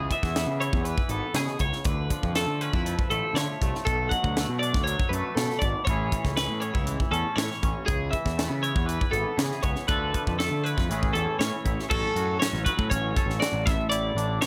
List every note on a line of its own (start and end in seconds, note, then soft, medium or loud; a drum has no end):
0.00 0.10 E3 medium
0.00 0.34 B3 medium
0.00 0.59 E4 medium
0.00 0.10 G#4 medium
0.00 1.84 G#4 medium
0.10 0.83 E3 medium
0.10 0.60 E5 medium
0.10 kick medium
0.10 closed hi-hat medium
0.23 0.44 E2 loud
0.23 kick medium
0.23 snare soft
0.35 1.10 B3 medium
0.35 snare medium
0.35 closed hi-hat medium
0.47 0.68 C#3 medium
0.59 1.82 E4 medium
0.59 0.85 C#5 medium
0.59 closed hi-hat medium
0.73 0.94 E2 medium
0.73 kick medium
0.83 2.09 E3 medium
0.83 1.10 B4 medium
0.83 closed hi-hat medium
0.98 kick medium
1.09 1.20 G#1 medium
1.09 1.82 B3 medium
1.09 1.35 A4 medium
1.09 closed hi-hat medium
1.34 1.59 B2 medium
1.34 1.45 C#3 medium
1.34 1.61 G#4 medium
1.34 snare medium
1.34 closed hi-hat medium
1.47 snare soft
1.59 1.71 C#2 medium
1.59 1.84 C#3 medium
1.59 1.86 C#5 medium
1.59 kick medium
1.59 closed hi-hat medium
1.73 snare soft
1.84 2.07 D2 medium
1.84 3.82 D3 medium
1.84 2.35 B4 medium
1.84 kick loud
1.84 closed hi-hat medium
2.10 2.84 F3 medium
2.10 kick medium
2.10 closed hi-hat medium
2.23 2.44 F2 medium
2.23 kick medium
2.35 3.11 A3 medium
2.35 2.61 A4 medium
2.35 snare medium
2.35 closed hi-hat medium
2.47 2.69 D3 medium
2.61 2.73 C#4 medium
2.61 3.10 B4 medium
2.61 closed hi-hat medium
2.73 2.95 F2 medium
2.73 3.86 E4 soft
2.73 kick medium
2.85 3.35 F3 medium
2.85 closed hi-hat medium
2.99 kick medium
3.10 3.21 A1 medium
3.10 3.62 A3 medium
3.10 3.35 A4 medium
3.10 closed hi-hat medium
3.34 3.45 D3 medium
3.34 3.83 F3 medium
3.34 3.85 C#5 medium
3.34 snare medium
3.34 closed hi-hat medium
3.62 3.72 C2 medium
3.62 4.36 A3 medium
3.62 kick medium
3.62 closed hi-hat medium
3.75 snare soft
3.85 4.08 B1 medium
3.85 5.36 B2 medium
3.85 4.10 A4 medium
3.85 kick loud
3.85 closed hi-hat medium
4.09 4.85 F#3 medium
4.09 4.59 F#5 medium
4.09 kick medium
4.09 closed hi-hat medium
4.24 4.45 D2 medium
4.24 kick medium
4.37 5.11 A3 medium
4.37 snare medium
4.37 closed hi-hat medium
4.49 4.70 B2 medium
4.59 5.84 D4 medium
4.59 4.83 D5 medium
4.59 closed hi-hat medium
4.73 4.95 D2 medium
4.73 kick medium
4.73 snare soft
4.84 5.84 F#3 medium
4.84 5.10 C#5 medium
4.84 closed hi-hat medium
5.00 kick medium
5.09 5.21 F#2 medium
5.09 5.35 B4 medium
5.09 closed hi-hat medium
5.13 5.88 A3 medium
5.35 5.47 B2 medium
5.35 5.62 C#3 medium
5.35 5.61 A4 medium
5.35 snare medium
5.35 closed hi-hat medium
5.50 snare soft
5.59 5.73 G#1 medium
5.59 5.87 B2 medium
5.59 5.84 D5 medium
5.59 kick medium
5.59 closed hi-hat medium
5.85 6.08 A1 loud
5.85 7.85 A2 medium
5.85 6.13 E3 medium
5.85 6.36 C#5 medium
5.85 kick medium
5.85 closed hi-hat medium
5.89 6.38 C#4 medium
5.89 6.61 E4 medium
5.89 7.87 G#4 medium
6.12 6.85 E3 medium
6.12 kick medium
6.12 closed hi-hat medium
6.25 6.46 C#2 medium
6.25 kick medium
6.25 snare soft
6.37 6.61 C#4 medium
6.37 6.60 B4 medium
6.37 snare medium
6.37 closed hi-hat medium
6.48 6.70 A2 medium
6.60 6.74 C#4 medium
6.60 7.11 C#5 medium
6.60 closed hi-hat medium
6.74 6.96 C#2 medium
6.74 7.87 E4 soft
6.74 kick medium
6.86 7.36 E3 medium
6.86 closed hi-hat medium
7.00 kick medium
7.11 7.23 E2 medium
7.11 7.62 C#4 medium
7.11 7.36 A4 medium
7.11 closed hi-hat medium
7.36 7.48 A2 medium
7.36 8.10 E3 medium
7.36 7.87 C#5 medium
7.36 snare loud
7.36 closed hi-hat medium
7.51 snare soft
7.63 7.73 A1 medium
7.63 7.85 C#4 medium
7.63 kick medium
7.63 closed hi-hat medium
7.86 8.09 C#2 medium
7.86 8.12 C#3 medium
7.86 8.12 G#4 medium
7.86 kick medium
7.86 closed hi-hat medium
8.11 8.85 E3 medium
8.11 8.62 E5 medium
8.11 kick medium
8.11 closed hi-hat medium
8.25 8.47 E2 medium
8.25 kick medium
8.25 snare soft
8.37 8.48 A3 medium
8.37 snare loud
8.37 closed hi-hat medium
8.48 8.72 C#3 medium
8.48 9.10 B3 soft
8.61 9.85 E4 medium
8.61 8.86 C#5 medium
8.61 closed hi-hat medium
8.76 8.97 E2 medium
8.76 kick medium
8.86 9.36 E3 medium
8.86 9.12 B4 medium
8.86 closed hi-hat medium
9.01 kick medium
9.11 9.24 G#1 medium
9.11 9.62 B3 medium
9.11 9.38 A4 medium
9.11 closed hi-hat medium
9.37 9.49 C#3 medium
9.37 9.88 E3 medium
9.37 9.63 G#4 medium
9.37 snare loud
9.37 closed hi-hat medium
9.52 snare soft
9.63 9.74 C#2 medium
9.63 9.86 B3 medium
9.63 9.88 C#5 medium
9.63 kick medium
9.63 closed hi-hat medium
9.76 snare soft
9.87 10.11 D2 loud
9.87 10.86 D3 medium
9.87 10.12 F3 medium
9.87 10.38 A3 soft
9.87 10.64 E4 medium
9.87 10.88 A4 medium
9.87 10.38 B4 medium
9.87 kick loud
9.87 closed hi-hat medium
10.14 10.87 F3 medium
10.14 kick medium
10.14 closed hi-hat medium
10.27 10.49 F2 medium
10.27 kick medium
10.39 10.90 A3 medium
10.39 10.64 A4 medium
10.39 snare loud
10.39 closed hi-hat medium
10.51 10.73 D3 medium
10.64 10.87 E4 medium
10.64 11.13 B4 medium
10.64 closed hi-hat medium
10.77 10.88 F2 medium
10.77 kick medium
10.77 snare soft
10.89 11.12 A1 medium
10.89 11.87 A2 medium
10.89 11.13 E3 medium
10.89 11.39 C#4 medium
10.89 11.64 E4 medium
10.89 11.89 G#4 medium
10.89 closed hi-hat medium
11.03 kick medium
11.13 11.25 E2 medium
11.13 11.90 E3 medium
11.13 11.39 A4 medium
11.13 closed hi-hat medium
11.39 11.51 A2 medium
11.39 11.88 C#4 soft
11.39 11.90 C#5 medium
11.39 snare loud
11.39 closed hi-hat medium
11.65 11.76 A1 medium
11.65 11.88 E4 medium
11.65 kick medium
11.65 closed hi-hat medium
11.80 snare soft
11.90 12.02 A1 loud
11.90 13.65 A2 medium
11.90 12.64 F#3 medium
11.90 12.40 C#4 medium
11.90 12.15 F#4 medium
11.90 12.39 A4 medium
11.90 13.17 A4 medium
11.90 kick loud
11.90 crash loud
12.15 12.37 F#2 medium
12.15 13.39 F#4 medium
12.15 closed hi-hat medium
12.40 12.90 C#4 medium
12.40 12.64 C#5 medium
12.40 snare loud
12.40 closed hi-hat medium
12.53 12.64 A1 medium
12.53 snare soft
12.65 13.63 F#3 medium
12.65 12.90 B4 medium
12.65 kick medium
12.65 closed hi-hat medium
12.78 12.89 A2 medium
12.78 kick medium
12.90 13.13 A1 medium
12.90 13.63 C#4 medium
12.90 13.39 C#5 medium
12.90 kick medium
12.90 closed hi-hat loud
13.16 14.46 A4 medium
13.16 kick medium
13.16 closed hi-hat medium
13.26 13.38 A1 medium
13.26 snare soft
13.40 13.63 F#4 medium
13.40 13.66 D5 medium
13.40 snare loud
13.40 closed hi-hat medium
13.53 13.64 A1 loud
13.65 14.10 A1 loud
13.65 14.46 A2 medium
13.65 13.89 E5 medium
13.65 kick loud
13.65 snare soft
13.65 closed hi-hat medium
13.90 14.46 E4 medium
13.90 14.41 D5 medium
13.90 closed hi-hat loud
14.15 14.37 A1 medium
14.15 14.46 D4 medium
14.15 closed hi-hat medium
14.41 14.46 E3 medium
14.41 14.46 C#5 medium
14.41 snare loud
14.41 closed hi-hat medium